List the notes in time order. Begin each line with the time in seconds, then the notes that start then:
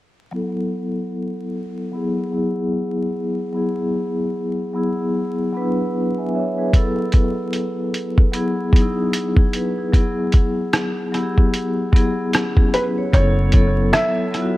0.31 F#3 B3 E4
0.36 A4
1.92 F#3 B3 E4
1.96 G#4
2.32 F#3 B3 E4
2.36 G#4
3.53 F#3 B3 E4
3.57 G#4
4.73 F#3 B3 E4 G#4
5.53 F#3 B3 D4
5.57 B4
5.62 E4
6.18 E5 G#5
6.35 C#5 E5
6.58 G#4 B4
6.73 F#3 B3 E4, kick, closed hi-hat
6.77 A4
7.12 kick, closed hi-hat
7.53 closed hi-hat
7.94 closed hi-hat
8.18 kick
8.32 F#3 B3 E4, closed hi-hat
8.36 G#4
8.73 F#3 B3 D#4, kick, closed hi-hat
8.77 G#4
8.82 E4
9.13 closed hi-hat
9.37 E4 G#4, kick
9.53 G#4 B4, closed hi-hat
9.78 E4 G#4
9.93 F#3 B3 E4, kick, closed hi-hat
9.97 G#4
10.32 kick, closed hi-hat
10.73 cross-stick, closed hi-hat
11.12 F#3 B3 E4, cross-stick, closed hi-hat
11.16 G4
11.23 G#4
11.38 kick
11.54 closed hi-hat
11.92 F#3 B3 E4, kick, closed hi-hat
11.97 G#4
12.33 C#4 E4, cross-stick, closed hi-hat
12.57 E4 G#4, kick
12.74 G#4 B4, closed hi-hat
12.98 C#5
13.13 F#1 F#3 B3 E4 C#5, kick, closed hi-hat
13.17 A4
13.52 F#3 B3 E4, kick, closed hi-hat
13.57 A4
13.93 E5, cross-stick, closed hi-hat
14.31 F#3 B3 E4, cross-stick, closed hi-hat
14.36 F4
14.42 F#4